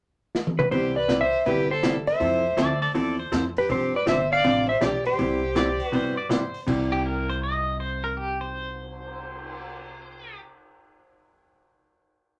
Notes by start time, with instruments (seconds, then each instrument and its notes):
0.35 snare
0.47 high tom
0.59 electric slide guitar B4, mid tom
0.71 upright bass C2, hollow-body jazz guitar C3 G3 B3 E4 G4, fiddle G4, electric slide guitar C5, open hi-hat
0.96 fiddle B4, electric slide guitar D5
1.08 hollow-body jazz guitar C3 G3 B3 E4 G4, snare, closed hi-hat
1.21 fiddle C5, electric slide guitar E5
1.33 open hi-hat
1.46 upright bass G1, hollow-body jazz guitar C3 G3 B3 E4 G4, fiddle G4, electric slide guitar B4, open hi-hat
1.71 fiddle A4, electric slide guitar C5
1.83 hollow-body jazz guitar C3 G3 B3 E4 G4, snare, closed hi-hat
2.07 fiddle C5, electric slide guitar E5, open hi-hat
2.20 upright bass F2, hollow-body jazz guitar F3 C4 E4 A4, open hi-hat
2.57 upright bass D2, hollow-body jazz guitar F3 C4 E4 A4, pedal steel guitar A4 D5, snare, closed hi-hat
2.82 pedal steel guitar A4 D5, open hi-hat
2.94 upright bass E2, hollow-body jazz guitar F3 C4 E4 A4, pedal steel guitar A4 D5, open hi-hat
3.19 pedal steel guitar C5
3.32 upright bass F2, hollow-body jazz guitar F3 C4 E4 A4, snare, closed hi-hat
3.57 fiddle G4, electric slide guitar B4, open hi-hat
3.69 upright bass G2, hollow-body jazz guitar C3 F3 C4 D4 G4, fiddle G4, electric slide guitar C5, open hi-hat
3.95 fiddle B4, electric slide guitar D5
4.06 upright bass G1, hollow-body jazz guitar C3 F3 C4 D4 G4, fiddle C5, electric slide guitar E5, snare, closed hi-hat
4.31 fiddle D5, electric slide guitar F5
4.44 upright bass A1, hollow-body jazz guitar C3 F3 C4 D4 G4, open hi-hat
4.68 fiddle C5, electric slide guitar E5
4.81 upright bass B1, hollow-body jazz guitar C3 F3 C4 D4 G4, fiddle G4, electric slide guitar D5, snare, closed hi-hat
5.05 fiddle G4, electric slide guitar C5, open hi-hat
5.19 upright bass C2, hollow-body jazz guitar C3 G3 B3 E4 G4, open hi-hat
5.55 hollow-body jazz guitar C3 G3 B3 E4 G4, pedal steel guitar D5, snare, closed hi-hat
5.80 open hi-hat
5.84 fiddle F#4, electric slide guitar B4
5.92 upright bass G2, hollow-body jazz guitar C3 G3 B3 E4 G4, pedal steel guitar C5, open hi-hat
6.17 pedal steel guitar D5
6.29 hollow-body jazz guitar C3 G3 B3 E4 G4, pedal steel guitar C5, snare, closed hi-hat
6.54 open hi-hat
6.67 upright bass C2, hollow-body jazz guitar C3 G3 E4 G4, kick, crash
6.91 pedal steel guitar G4, cymbal swell
7.06 pedal steel guitar A#4
7.29 pedal steel guitar C5
7.43 pedal steel guitar D#5
7.80 pedal steel guitar C5
8.04 pedal steel guitar A#4
8.17 pedal steel guitar G4
8.41 pedal steel guitar C5